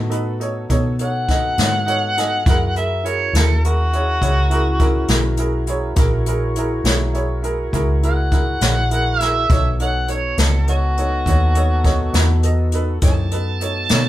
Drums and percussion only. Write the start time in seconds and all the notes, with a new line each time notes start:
0.11 closed hi-hat
0.41 closed hi-hat
0.70 kick, closed hi-hat
0.99 closed hi-hat
1.28 kick, snare, closed hi-hat
1.58 snare, closed hi-hat
1.88 closed hi-hat
2.17 snare, closed hi-hat
2.46 kick, closed hi-hat
2.76 closed hi-hat
3.05 closed hi-hat
3.35 snare, closed hi-hat
3.64 closed hi-hat
3.93 closed hi-hat
4.22 kick, closed hi-hat
4.51 closed hi-hat
4.79 kick, closed hi-hat
5.08 snare, closed hi-hat
5.37 closed hi-hat
5.67 closed hi-hat
5.96 kick, closed hi-hat
6.26 closed hi-hat
6.56 closed hi-hat
6.85 snare, closed hi-hat
7.14 closed hi-hat
7.44 closed hi-hat
7.73 kick, closed hi-hat
8.03 closed hi-hat
8.31 kick, closed hi-hat
8.61 snare, closed hi-hat
8.91 closed hi-hat
9.20 snare, closed hi-hat
9.50 kick, closed hi-hat
9.80 closed hi-hat
10.08 closed hi-hat
10.38 snare, closed hi-hat
10.68 closed hi-hat
10.97 closed hi-hat
11.26 kick, closed hi-hat
11.55 closed hi-hat
11.84 kick, snare, closed hi-hat
12.14 snare, closed hi-hat
12.43 closed hi-hat
12.72 closed hi-hat
13.02 kick, closed hi-hat
13.31 closed hi-hat
13.61 closed hi-hat
13.89 snare, closed hi-hat